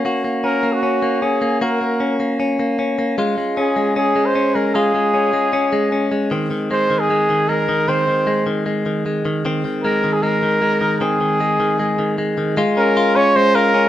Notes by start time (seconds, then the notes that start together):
Already playing: C#4
0.05 A#3 F#4
0.24 A#3
0.44 C#4 A#4
0.63 A#3
0.73 F#4
0.83 C#4
1.02 A#3
1.22 C#4 G#4
1.42 A#3
1.61 A#3 F#4 A#4
1.81 A#3
2.00 C#4
2.20 A#3
2.40 C#4
2.59 A#3
2.79 C#4
2.99 A#3
3.18 G#3 F4
3.38 G#3
3.57 C#4 G#4
3.76 G#3
3.96 C#4 G#4
4.16 G#3
4.26 C5
4.35 C#4
4.55 G#3 A#4
4.75 G#3 F4 G#4
4.95 G#3
5.14 C#4
5.33 G#3
5.53 C#4
5.73 G#3
5.92 C#4
6.12 G#3
6.31 D#3 C4
6.51 D#3
6.71 G#3 C5
6.90 D#3
7.00 G#4
7.10 G#3
7.30 D#3
7.49 G#3 A#4
7.69 D#3
7.88 D#3 C4 C5
8.08 D#3
8.27 G#3
8.47 D#3
8.66 G#3
8.86 D#3
9.06 G#3
9.25 D#3
9.45 D#3 C4
9.65 D#3
9.83 G#3 A#4
10.04 D#3
10.13 G#4
10.23 G#3 A#4
10.43 D#3
10.62 G#3
10.81 D#3
11.01 D#3 C4 G#4
11.21 D#3
11.40 G#3
11.60 D#3
11.79 G#3
11.99 D#3
12.18 G#3
12.38 D#3
12.57 G#3 F4
12.77 C#4 A#4
12.97 F4
13.16 C#4 C#5
13.36 G#3 C5
13.55 F4 A#4
13.74 C#4